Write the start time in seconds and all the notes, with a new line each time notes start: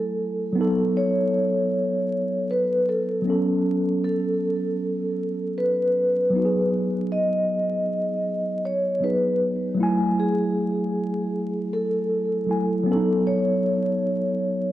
Already playing: F#3 A3 E4 A4 G#5
0.53 F#3 B3
0.58 D#4 A4
0.97 C#5
2.51 B4
2.89 A4
3.22 F#3 B3
3.27 C#4 A4
4.04 A4
5.58 B4
6.30 F#3 B3
6.36 D#4 F#4
6.45 G#4
7.12 D#5
8.65 C#5
9.00 F#3 B3 D#4 B4
9.04 G#4
9.75 F#3 A3
9.80 E4 G#5
10.20 G#4
11.73 A4
12.47 F#3 A3 E4
12.51 G#5
12.83 F#3 B3
12.89 C#4 A4
12.95 D#4
13.27 C#5